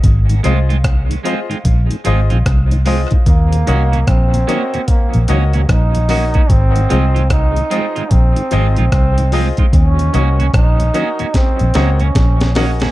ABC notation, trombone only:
X:1
M:4/4
L:1/16
Q:"Swing 16ths" 1/4=74
K:Abmix
V:1 name="Trombone"
z16 | B,4 C4 B,2 z G, E4 | C4 E4 C4 C3 z | D4 E4 C3 D3 z2 |]